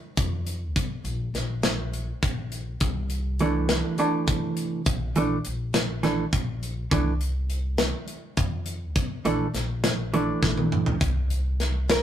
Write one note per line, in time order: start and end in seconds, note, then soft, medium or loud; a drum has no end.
0.17 0.76 F2 medium
0.17 kick loud
0.17 closed hi-hat medium
0.47 closed hi-hat medium
0.76 1.01 A#1 medium
0.76 kick medium
0.76 closed hi-hat medium
1.04 1.30 A#1 medium
1.04 closed hi-hat medium
1.34 2.08 A#1 medium
1.34 snare soft
1.34 closed hi-hat soft
1.63 snare medium
1.63 closed hi-hat medium
1.93 closed hi-hat soft
2.23 2.72 A#1 medium
2.23 kick loud
2.23 closed hi-hat medium
2.52 closed hi-hat medium
2.80 3.80 C2 medium
2.80 kick medium
2.80 closed hi-hat medium
3.10 closed hi-hat medium
3.39 3.97 E3 medium
3.39 3.98 A3 medium
3.39 3.98 D4 medium
3.39 closed hi-hat medium
3.69 snare medium
3.69 closed hi-hat medium
3.98 4.81 E3 medium
3.98 4.81 A3 medium
3.98 4.81 D4 medium
3.98 closed hi-hat medium
4.28 4.88 C3 medium
4.28 kick medium
4.28 closed hi-hat medium
4.57 closed hi-hat medium
4.86 5.11 A#1 medium
4.86 kick loud
4.86 closed hi-hat medium
5.16 5.41 A#1 medium
5.16 5.36 E3 medium
5.16 5.37 A3 medium
5.16 5.37 D4 medium
5.16 closed hi-hat medium
5.45 6.20 A#1 medium
5.45 closed hi-hat medium
5.74 snare loud
5.74 closed hi-hat medium
6.03 6.24 E3 medium
6.03 6.24 A3 medium
6.03 6.24 D4 medium
6.03 snare soft
6.03 closed hi-hat medium
6.33 6.82 A#1 medium
6.33 kick loud
6.33 closed hi-hat medium
6.63 closed hi-hat medium
6.91 7.90 C2 medium
6.91 7.12 E3 medium
6.91 7.12 A3 medium
6.91 7.13 D4 medium
6.91 kick loud
6.91 closed hi-hat medium
7.21 closed hi-hat medium
7.50 closed hi-hat soft
7.78 snare loud
7.78 closed hi-hat medium
8.08 closed hi-hat soft
8.37 8.96 F2 medium
8.37 kick medium
8.37 closed hi-hat medium
8.66 closed hi-hat medium
8.96 9.21 A#1 loud
8.96 kick loud
8.96 closed hi-hat medium
9.25 9.50 A#1 medium
9.25 9.46 E3 medium
9.25 9.46 A3 medium
9.25 9.46 D4 medium
9.25 closed hi-hat medium
9.54 10.28 A#1 medium
9.54 snare soft
9.54 closed hi-hat medium
9.84 snare loud
9.84 closed hi-hat medium
10.14 10.95 E3 medium
10.14 10.96 A3 medium
10.14 10.96 D4 medium
10.14 closed hi-hat medium
10.43 10.92 A#1 medium
10.43 kick medium
10.43 snare medium
10.57 high tom medium
10.72 mid tom medium
10.86 floor tom medium
11.01 12.00 C2 medium
11.01 kick loud
11.01 closed hi-hat medium
11.30 closed hi-hat medium
11.60 snare soft
11.60 closed hi-hat medium
11.90 12.03 A#4 medium
11.90 snare loud
11.90 closed hi-hat medium